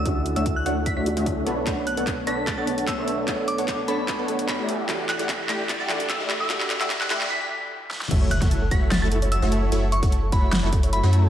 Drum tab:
CC |----------------|----------------|----------------|----------------|
HH |x-xxx-x-x-xxx-x-|x-xxx-x-x-xxx-x-|x-xxx-x-x-xxx-x-|x-xxx-x-x-xxx-x-|
CP |----------------|x---x---x---x---|x---x---x---x---|x-x-x-x-x-x-x-x-|
SD |----------------|----------------|----------------|----------------|
BD |o---o---o---o---|o---o---o---o---|o---o---o---o---|o---o---o---o---|

CC |----------------|x---------------|----------------|
HH |x-xxx-x---------|x-xxx-x-x-xxx-x-|x-xxx-x-x-xxx-x-|
CP |xxxxxxxx--------|----------------|----------------|
SD |--------------oo|---o----o-------|--------o-------|
BD |o---o-----------|o--o--o---------|---o--o---o-----|